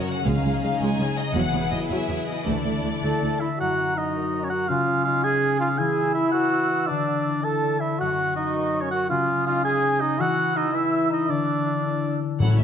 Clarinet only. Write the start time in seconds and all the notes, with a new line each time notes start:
3.60 F#4
4.69 C#4
5.79 E4
6.87 D4
7.98 F#4
9.10 C#4
10.18 E4
11.29 D4